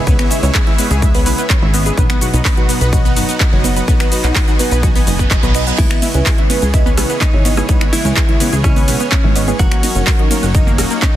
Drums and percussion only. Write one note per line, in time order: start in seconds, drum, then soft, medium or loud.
0.07 kick loud
0.07 closed hi-hat medium
0.07 shaker soft
0.19 finger snap medium
0.19 closed hi-hat soft
0.19 shaker soft
0.31 open hi-hat loud
0.31 shaker medium
0.43 closed hi-hat soft
0.43 shaker soft
0.55 kick loud
0.55 clap loud
0.55 closed hi-hat medium
0.55 shaker soft
0.67 closed hi-hat soft
0.78 open hi-hat loud
0.78 shaker medium
0.91 closed hi-hat medium
0.91 shaker soft
1.02 kick loud
1.02 closed hi-hat medium
1.02 shaker soft
1.15 open hi-hat medium
1.15 shaker soft
1.26 open hi-hat loud
1.26 shaker medium
1.38 closed hi-hat medium
1.38 shaker soft
1.50 kick loud
1.50 clap loud
1.50 closed hi-hat medium
1.50 shaker soft
1.74 open hi-hat loud
1.74 shaker medium
1.86 closed hi-hat medium
1.86 shaker soft
1.97 kick loud
1.97 closed hi-hat medium
1.97 shaker soft
2.10 finger snap medium
2.10 closed hi-hat soft
2.10 shaker soft
2.21 open hi-hat loud
2.21 shaker medium
2.34 closed hi-hat medium
2.34 shaker soft
2.45 kick loud
2.45 clap loud
2.45 open hi-hat medium
2.45 shaker soft
2.57 closed hi-hat soft
2.69 open hi-hat loud
2.69 shaker medium
2.81 closed hi-hat medium
2.81 shaker soft
2.93 kick loud
2.93 closed hi-hat medium
2.93 shaker soft
3.06 shaker soft
3.16 open hi-hat loud
3.16 shaker medium
3.29 closed hi-hat medium
3.29 shaker soft
3.40 kick loud
3.40 clap loud
3.40 closed hi-hat medium
3.40 shaker soft
3.64 open hi-hat loud
3.64 shaker medium
3.76 closed hi-hat medium
3.76 shaker soft
3.88 kick loud
3.88 closed hi-hat medium
3.88 shaker soft
4.00 finger snap medium
4.00 closed hi-hat soft
4.00 shaker soft
4.12 open hi-hat loud
4.12 shaker medium
4.24 clap soft
4.24 closed hi-hat medium
4.24 shaker soft
4.36 kick loud
4.36 clap loud
4.36 open hi-hat medium
4.36 shaker soft
4.48 closed hi-hat soft
4.48 shaker soft
4.59 open hi-hat loud
4.59 shaker medium
4.71 closed hi-hat medium
4.71 shaker soft
4.83 kick loud
4.83 closed hi-hat medium
4.83 shaker soft
4.95 open hi-hat medium
4.95 shaker soft
5.07 open hi-hat loud
5.07 shaker medium
5.19 kick medium
5.19 closed hi-hat medium
5.19 shaker soft
5.31 kick loud
5.31 clap loud
5.31 closed hi-hat medium
5.31 shaker soft
5.43 closed hi-hat soft
5.43 shaker soft
5.54 finger snap medium
5.54 open hi-hat loud
5.54 shaker medium
5.67 closed hi-hat medium
5.67 shaker soft
5.78 kick loud
5.78 closed hi-hat medium
5.78 ride medium
5.78 crash medium
5.78 shaker soft
5.91 finger snap medium
5.91 closed hi-hat soft
5.91 shaker soft
6.02 open hi-hat loud
6.02 ride medium
6.02 high conga loud
6.02 shaker medium
6.14 closed hi-hat medium
6.14 shaker soft
6.26 kick loud
6.26 clap loud
6.26 open hi-hat medium
6.26 ride medium
6.26 shaker soft
6.38 closed hi-hat soft
6.50 open hi-hat loud
6.50 ride medium
6.50 high conga medium
6.50 shaker medium
6.62 closed hi-hat medium
6.62 shaker soft
6.74 kick loud
6.74 closed hi-hat medium
6.74 ride medium
6.74 shaker soft
6.86 high conga loud
6.86 shaker soft
6.97 cross-stick medium
6.97 open hi-hat loud
6.97 ride medium
6.97 shaker medium
7.10 closed hi-hat medium
7.10 shaker soft
7.21 kick loud
7.21 clap loud
7.21 closed hi-hat medium
7.21 ride medium
7.21 high conga medium
7.21 shaker soft
7.45 open hi-hat loud
7.45 ride medium
7.45 shaker medium
7.57 cross-stick medium
7.57 closed hi-hat medium
7.57 high conga loud
7.57 shaker soft
7.69 kick loud
7.69 closed hi-hat medium
7.69 ride medium
7.69 shaker soft
7.81 finger snap medium
7.81 closed hi-hat soft
7.81 shaker soft
7.93 open hi-hat loud
7.93 ride medium
7.93 high conga loud
7.93 shaker medium
8.05 closed hi-hat medium
8.05 shaker soft
8.16 kick loud
8.16 clap loud
8.16 closed hi-hat medium
8.16 ride medium
8.16 shaker soft
8.29 closed hi-hat soft
8.40 open hi-hat loud
8.40 ride medium
8.40 high conga medium
8.40 shaker medium
8.53 closed hi-hat medium
8.53 shaker soft
8.64 kick loud
8.64 cross-stick medium
8.64 closed hi-hat medium
8.64 ride medium
8.64 shaker soft
8.76 open hi-hat medium
8.76 high conga medium
8.76 shaker soft
8.88 open hi-hat loud
8.88 ride medium
8.88 shaker medium
9.00 closed hi-hat medium
9.00 shaker soft
9.12 kick loud
9.12 clap loud
9.12 closed hi-hat medium
9.12 ride medium
9.12 high conga medium
9.12 shaker soft
9.35 open hi-hat loud
9.35 ride medium
9.35 shaker medium
9.48 closed hi-hat medium
9.48 high conga medium
9.48 shaker soft
9.59 kick loud
9.59 closed hi-hat medium
9.59 ride medium
9.59 shaker soft
9.72 finger snap medium
9.72 closed hi-hat soft
9.72 shaker soft
9.83 open hi-hat loud
9.83 ride medium
9.83 high conga loud
9.83 shaker medium
9.95 closed hi-hat soft
9.95 shaker soft
10.07 kick loud
10.07 clap loud
10.07 open hi-hat medium
10.07 ride medium
10.07 shaker soft
10.19 closed hi-hat soft
10.31 open hi-hat loud
10.31 ride medium
10.31 high conga medium
10.31 shaker medium
10.43 closed hi-hat medium
10.43 shaker soft
10.55 kick loud
10.55 closed hi-hat medium
10.55 ride medium
10.55 shaker soft
10.67 high conga medium
10.67 shaker soft
10.78 cross-stick medium
10.78 open hi-hat loud
10.78 ride medium
10.78 shaker medium
10.91 closed hi-hat medium
10.91 shaker soft
11.02 kick loud
11.02 clap loud
11.02 closed hi-hat medium
11.02 ride medium
11.02 high conga medium
11.02 shaker soft